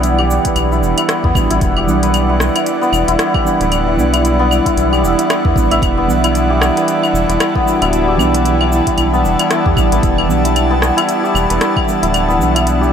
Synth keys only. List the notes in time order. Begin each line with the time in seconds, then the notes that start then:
Already playing: E3 G3 B3 D4 F#5
1.34 E3 G3 B3 D4 F#4
1.86 E3 G3 B3 D4
1.90 F#5
3.44 E3 G3 B3 D4 F#5
3.96 E3 G3 B3 D4
4.00 F#5
5.54 E3 G3 B3 D4 F#5
6.06 E3 G3 B3 D4
6.10 F#5
7.65 E3 G3 B3 D4 F#4
8.17 E3 G3 B3 D4 F#5
9.76 E3 G3 B3 D4 F#5
10.27 E3 G3 B3 D4
10.32 F#5
11.87 E3 G3 B3 D4 F#5
12.38 E3 G3 B3 D4 F#5